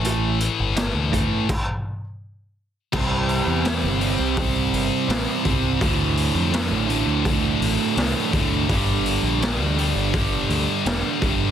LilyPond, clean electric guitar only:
\new Staff \with { instrumentName = "Clean electric guitar" } { \clef bass \time 4/4 \key c \mixolydian \tempo 4 = 83 <a, e a>8 e8 <a, e>8 <a, e a>8 r2 | r1 | r1 | r1 | }